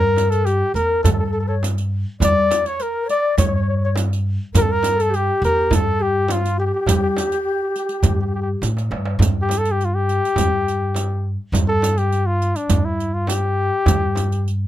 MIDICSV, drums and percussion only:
0, 0, Header, 1, 4, 480
1, 0, Start_track
1, 0, Tempo, 583090
1, 1818, Time_signature, 4, 2, 24, 8
1, 12080, End_track
2, 0, Start_track
2, 0, Title_t, "Darbuka"
2, 145, Note_on_c, 9, 63, 61
2, 227, Note_off_c, 9, 63, 0
2, 858, Note_on_c, 9, 64, 96
2, 941, Note_off_c, 9, 64, 0
2, 1340, Note_on_c, 9, 63, 66
2, 1422, Note_off_c, 9, 63, 0
2, 1451, Note_on_c, 9, 62, 30
2, 1533, Note_off_c, 9, 62, 0
2, 1823, Note_on_c, 9, 64, 104
2, 1905, Note_off_c, 9, 64, 0
2, 2069, Note_on_c, 9, 63, 70
2, 2151, Note_off_c, 9, 63, 0
2, 2781, Note_on_c, 9, 64, 94
2, 2863, Note_off_c, 9, 64, 0
2, 3256, Note_on_c, 9, 63, 66
2, 3339, Note_off_c, 9, 63, 0
2, 3389, Note_on_c, 9, 62, 30
2, 3472, Note_off_c, 9, 62, 0
2, 3750, Note_on_c, 9, 64, 92
2, 3833, Note_off_c, 9, 64, 0
2, 3983, Note_on_c, 9, 63, 64
2, 4065, Note_off_c, 9, 63, 0
2, 4710, Note_on_c, 9, 64, 90
2, 4792, Note_off_c, 9, 64, 0
2, 5179, Note_on_c, 9, 63, 68
2, 5262, Note_off_c, 9, 63, 0
2, 5305, Note_on_c, 9, 62, 27
2, 5387, Note_off_c, 9, 62, 0
2, 5651, Note_on_c, 9, 64, 93
2, 5733, Note_off_c, 9, 64, 0
2, 5901, Note_on_c, 9, 63, 67
2, 5984, Note_off_c, 9, 63, 0
2, 6137, Note_on_c, 9, 62, 28
2, 6219, Note_off_c, 9, 62, 0
2, 6374, Note_on_c, 9, 62, 27
2, 6456, Note_off_c, 9, 62, 0
2, 6607, Note_on_c, 9, 64, 86
2, 6690, Note_off_c, 9, 64, 0
2, 7095, Note_on_c, 9, 63, 51
2, 7178, Note_off_c, 9, 63, 0
2, 7218, Note_on_c, 9, 62, 69
2, 7300, Note_off_c, 9, 62, 0
2, 7340, Note_on_c, 9, 63, 85
2, 7423, Note_off_c, 9, 63, 0
2, 7454, Note_on_c, 9, 62, 91
2, 7536, Note_off_c, 9, 62, 0
2, 7583, Note_on_c, 9, 64, 95
2, 7665, Note_off_c, 9, 64, 0
2, 7813, Note_on_c, 9, 63, 62
2, 7895, Note_off_c, 9, 63, 0
2, 8310, Note_on_c, 9, 62, 28
2, 8392, Note_off_c, 9, 62, 0
2, 8538, Note_on_c, 9, 64, 88
2, 8621, Note_off_c, 9, 64, 0
2, 9020, Note_on_c, 9, 63, 65
2, 9103, Note_off_c, 9, 63, 0
2, 9498, Note_on_c, 9, 64, 87
2, 9580, Note_off_c, 9, 64, 0
2, 9741, Note_on_c, 9, 63, 58
2, 9824, Note_off_c, 9, 63, 0
2, 10221, Note_on_c, 9, 62, 26
2, 10303, Note_off_c, 9, 62, 0
2, 10453, Note_on_c, 9, 64, 98
2, 10535, Note_off_c, 9, 64, 0
2, 10936, Note_on_c, 9, 63, 68
2, 11019, Note_off_c, 9, 63, 0
2, 11409, Note_on_c, 9, 64, 111
2, 11491, Note_off_c, 9, 64, 0
2, 11651, Note_on_c, 9, 63, 60
2, 11734, Note_off_c, 9, 63, 0
2, 12080, End_track
3, 0, Start_track
3, 0, Title_t, "Frame drum"
3, 136, Note_on_c, 9, 64, 58
3, 219, Note_off_c, 9, 64, 0
3, 863, Note_on_c, 9, 64, 88
3, 945, Note_off_c, 9, 64, 0
3, 1341, Note_on_c, 9, 64, 68
3, 1423, Note_off_c, 9, 64, 0
3, 1812, Note_on_c, 9, 64, 82
3, 1895, Note_off_c, 9, 64, 0
3, 2064, Note_on_c, 9, 64, 70
3, 2146, Note_off_c, 9, 64, 0
3, 2784, Note_on_c, 9, 64, 91
3, 2866, Note_off_c, 9, 64, 0
3, 3257, Note_on_c, 9, 64, 74
3, 3339, Note_off_c, 9, 64, 0
3, 3744, Note_on_c, 9, 64, 93
3, 3827, Note_off_c, 9, 64, 0
3, 3974, Note_on_c, 9, 64, 71
3, 4056, Note_off_c, 9, 64, 0
3, 4698, Note_on_c, 9, 64, 99
3, 4781, Note_off_c, 9, 64, 0
3, 5174, Note_on_c, 9, 64, 78
3, 5256, Note_off_c, 9, 64, 0
3, 5658, Note_on_c, 9, 64, 96
3, 5740, Note_off_c, 9, 64, 0
3, 5899, Note_on_c, 9, 64, 71
3, 5981, Note_off_c, 9, 64, 0
3, 6608, Note_on_c, 9, 64, 89
3, 6690, Note_off_c, 9, 64, 0
3, 7095, Note_on_c, 9, 64, 66
3, 7178, Note_off_c, 9, 64, 0
3, 7569, Note_on_c, 9, 64, 82
3, 7651, Note_off_c, 9, 64, 0
3, 7811, Note_on_c, 9, 64, 55
3, 7894, Note_off_c, 9, 64, 0
3, 8528, Note_on_c, 9, 64, 93
3, 8610, Note_off_c, 9, 64, 0
3, 9011, Note_on_c, 9, 64, 61
3, 9093, Note_off_c, 9, 64, 0
3, 9495, Note_on_c, 9, 64, 93
3, 9577, Note_off_c, 9, 64, 0
3, 9733, Note_on_c, 9, 64, 66
3, 9815, Note_off_c, 9, 64, 0
3, 10449, Note_on_c, 9, 64, 91
3, 10532, Note_off_c, 9, 64, 0
3, 10927, Note_on_c, 9, 64, 70
3, 11009, Note_off_c, 9, 64, 0
3, 11414, Note_on_c, 9, 64, 93
3, 11496, Note_off_c, 9, 64, 0
3, 11656, Note_on_c, 9, 64, 68
3, 11739, Note_off_c, 9, 64, 0
3, 12080, End_track
4, 0, Start_track
4, 0, Title_t, "Riq"
4, 149, Note_on_c, 9, 54, 41
4, 231, Note_off_c, 9, 54, 0
4, 264, Note_on_c, 9, 54, 19
4, 346, Note_off_c, 9, 54, 0
4, 384, Note_on_c, 9, 54, 18
4, 466, Note_off_c, 9, 54, 0
4, 624, Note_on_c, 9, 54, 21
4, 706, Note_off_c, 9, 54, 0
4, 868, Note_on_c, 9, 54, 55
4, 950, Note_off_c, 9, 54, 0
4, 1352, Note_on_c, 9, 54, 45
4, 1434, Note_off_c, 9, 54, 0
4, 1465, Note_on_c, 9, 54, 19
4, 1547, Note_off_c, 9, 54, 0
4, 1829, Note_on_c, 9, 54, 67
4, 1912, Note_off_c, 9, 54, 0
4, 2069, Note_on_c, 9, 54, 48
4, 2152, Note_off_c, 9, 54, 0
4, 2189, Note_on_c, 9, 54, 21
4, 2271, Note_off_c, 9, 54, 0
4, 2302, Note_on_c, 9, 54, 20
4, 2384, Note_off_c, 9, 54, 0
4, 2547, Note_on_c, 9, 54, 22
4, 2629, Note_off_c, 9, 54, 0
4, 2785, Note_on_c, 9, 54, 55
4, 2867, Note_off_c, 9, 54, 0
4, 3270, Note_on_c, 9, 54, 46
4, 3353, Note_off_c, 9, 54, 0
4, 3399, Note_on_c, 9, 54, 20
4, 3482, Note_off_c, 9, 54, 0
4, 3748, Note_on_c, 9, 54, 59
4, 3830, Note_off_c, 9, 54, 0
4, 3985, Note_on_c, 9, 54, 45
4, 4068, Note_off_c, 9, 54, 0
4, 4115, Note_on_c, 9, 54, 20
4, 4197, Note_off_c, 9, 54, 0
4, 4230, Note_on_c, 9, 54, 18
4, 4312, Note_off_c, 9, 54, 0
4, 4480, Note_on_c, 9, 54, 22
4, 4562, Note_off_c, 9, 54, 0
4, 4715, Note_on_c, 9, 54, 53
4, 4798, Note_off_c, 9, 54, 0
4, 5190, Note_on_c, 9, 54, 51
4, 5272, Note_off_c, 9, 54, 0
4, 5314, Note_on_c, 9, 54, 20
4, 5396, Note_off_c, 9, 54, 0
4, 5669, Note_on_c, 9, 54, 67
4, 5751, Note_off_c, 9, 54, 0
4, 5911, Note_on_c, 9, 54, 47
4, 5993, Note_off_c, 9, 54, 0
4, 6026, Note_on_c, 9, 54, 19
4, 6109, Note_off_c, 9, 54, 0
4, 6385, Note_on_c, 9, 54, 19
4, 6468, Note_off_c, 9, 54, 0
4, 6495, Note_on_c, 9, 54, 20
4, 6577, Note_off_c, 9, 54, 0
4, 6614, Note_on_c, 9, 54, 62
4, 6696, Note_off_c, 9, 54, 0
4, 7103, Note_on_c, 9, 54, 45
4, 7186, Note_off_c, 9, 54, 0
4, 7231, Note_on_c, 9, 54, 18
4, 7313, Note_off_c, 9, 54, 0
4, 7593, Note_on_c, 9, 54, 60
4, 7675, Note_off_c, 9, 54, 0
4, 7829, Note_on_c, 9, 54, 45
4, 7912, Note_off_c, 9, 54, 0
4, 7947, Note_on_c, 9, 54, 18
4, 8029, Note_off_c, 9, 54, 0
4, 8073, Note_on_c, 9, 54, 17
4, 8156, Note_off_c, 9, 54, 0
4, 8307, Note_on_c, 9, 54, 18
4, 8390, Note_off_c, 9, 54, 0
4, 8439, Note_on_c, 9, 54, 16
4, 8522, Note_off_c, 9, 54, 0
4, 8544, Note_on_c, 9, 54, 50
4, 8626, Note_off_c, 9, 54, 0
4, 8794, Note_on_c, 9, 54, 19
4, 8877, Note_off_c, 9, 54, 0
4, 9024, Note_on_c, 9, 54, 46
4, 9106, Note_off_c, 9, 54, 0
4, 9505, Note_on_c, 9, 54, 57
4, 9588, Note_off_c, 9, 54, 0
4, 9745, Note_on_c, 9, 54, 50
4, 9828, Note_off_c, 9, 54, 0
4, 9859, Note_on_c, 9, 54, 19
4, 9941, Note_off_c, 9, 54, 0
4, 9981, Note_on_c, 9, 54, 17
4, 10063, Note_off_c, 9, 54, 0
4, 10223, Note_on_c, 9, 54, 19
4, 10305, Note_off_c, 9, 54, 0
4, 10338, Note_on_c, 9, 54, 20
4, 10420, Note_off_c, 9, 54, 0
4, 10451, Note_on_c, 9, 54, 56
4, 10533, Note_off_c, 9, 54, 0
4, 10704, Note_on_c, 9, 54, 21
4, 10786, Note_off_c, 9, 54, 0
4, 10944, Note_on_c, 9, 54, 50
4, 11026, Note_off_c, 9, 54, 0
4, 11428, Note_on_c, 9, 54, 62
4, 11510, Note_off_c, 9, 54, 0
4, 11667, Note_on_c, 9, 54, 44
4, 11749, Note_off_c, 9, 54, 0
4, 11790, Note_on_c, 9, 54, 19
4, 11872, Note_off_c, 9, 54, 0
4, 11917, Note_on_c, 9, 54, 20
4, 12000, Note_off_c, 9, 54, 0
4, 12080, End_track
0, 0, End_of_file